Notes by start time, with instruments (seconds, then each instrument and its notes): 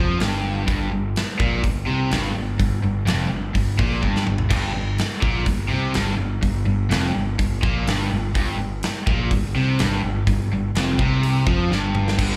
Already playing: fingered electric bass F2, overdriven electric guitar F3
0.19 fingered electric bass G1, overdriven electric guitar G2, snare, open hi-hat
0.67 fingered electric bass G1, overdriven electric guitar G2, kick, open hi-hat
0.91 fingered electric bass G1, overdriven electric guitar G2
1.16 snare, open hi-hat
1.39 fingered electric bass A#1, overdriven electric guitar A#2, kick
1.62 fingered electric bass G1, overdriven electric guitar G2, kick, open hi-hat
1.87 fingered electric bass C2, overdriven electric guitar C3
2.11 fingered electric bass G1, overdriven electric guitar G2, snare, open hi-hat
2.35 fingered electric bass G1, overdriven electric guitar G2
2.59 fingered electric bass G1, overdriven electric guitar G2, kick, open hi-hat
2.83 fingered electric bass G1, overdriven electric guitar G2
3.06 fingered electric bass F1, overdriven electric guitar F2, snare, open hi-hat
3.31 fingered electric bass G1, overdriven electric guitar G2
3.55 fingered electric bass G1, overdriven electric guitar G2, kick, open hi-hat
3.79 fingered electric bass A#1, overdriven electric guitar A#2, kick
4.02 fingered electric bass G1, overdriven electric guitar G2, kick
4.16 snare
4.26 fingered electric bass G1, overdriven electric guitar G2, mid tom
4.38 floor tom
4.50 fingered electric bass G1, overdriven electric guitar G2, kick, open hi-hat, crash
4.74 fingered electric bass G1, overdriven electric guitar G2
4.98 snare, open hi-hat
5.22 fingered electric bass A#1, overdriven electric guitar A#2, kick
5.45 fingered electric bass G1, overdriven electric guitar G2, kick, open hi-hat
5.69 fingered electric bass C2, overdriven electric guitar C3
5.93 fingered electric bass G1, overdriven electric guitar G2, snare, open hi-hat
6.17 fingered electric bass G1, overdriven electric guitar G2
6.42 fingered electric bass G1, overdriven electric guitar G2, kick, open hi-hat
6.66 fingered electric bass G1, overdriven electric guitar G2
6.90 fingered electric bass F1, overdriven electric guitar F2, snare, open hi-hat
7.15 fingered electric bass G1, overdriven electric guitar G2
7.39 fingered electric bass G1, overdriven electric guitar G2, kick, open hi-hat
7.62 fingered electric bass A#1, overdriven electric guitar A#2, kick
7.87 fingered electric bass G1, overdriven electric guitar G2, snare, open hi-hat
8.12 fingered electric bass G1, overdriven electric guitar G2
8.35 fingered electric bass G1, overdriven electric guitar G2, kick, open hi-hat
8.59 fingered electric bass G1, overdriven electric guitar G2
8.83 snare, open hi-hat
9.07 fingered electric bass A#1, overdriven electric guitar A#2, kick
9.31 fingered electric bass G1, overdriven electric guitar G2, kick, open hi-hat
9.55 fingered electric bass C2, overdriven electric guitar C3
9.79 fingered electric bass G1, overdriven electric guitar G2, snare, open hi-hat
10.03 fingered electric bass G1, overdriven electric guitar G2
10.27 fingered electric bass G1, overdriven electric guitar G2, kick, open hi-hat
10.51 fingered electric bass G1, overdriven electric guitar G2
10.74 fingered electric bass F1, overdriven electric guitar F2, snare, open hi-hat
10.99 fingered electric bass C2, overdriven electric guitar C3, kick
11.23 open hi-hat
11.47 fingered electric bass F2, overdriven electric guitar F3, kick
11.70 fingered electric bass G1, overdriven electric guitar G2, snare
11.95 mid tom
12.08 snare
12.18 fingered electric bass G1, overdriven electric guitar G2 D3, kick, crash